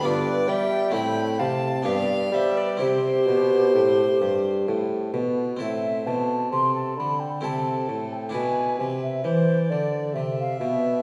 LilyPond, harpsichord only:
<<
  \new Staff \with { instrumentName = "Harpsichord" } { \time 3/4 \key c \major \tempo 4 = 66 <b d' f'>4 <a c' e'>4 <b d' g'>4 | <c' e' g'>2. | \key a \minor <c' e' a'>2 <c' e' a'>4 | <d' e' b'>2. | }
  \new Staff \with { instrumentName = "Harpsichord" } { \clef bass \time 3/4 \key c \major g,8 g8 a,8 c8 g,8 g8 | c8 b,8 a,8 g,8 a,8 b,8 | \key a \minor a,8 b,8 c8 d8 c8 a,8 | b,8 c8 e8 d8 c8 b,8 | }
>>